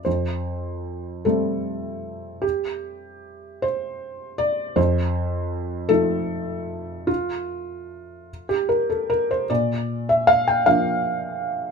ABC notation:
X:1
M:6/8
L:1/16
Q:3/8=51
K:F
V:1 name="Felt piano"
c6 A6 | G6 c4 d2 | c6 A6 | F6- F G B A B c |
d3 e f g f6 |]
V:2 name="Felt piano" clef=bass
F,,6 [G,A,C]6- | [G,A,C]12 | F,,6 [F,A,_E]6- | [F,A,_E]12 |
B,,6 [F,B,D]6 |]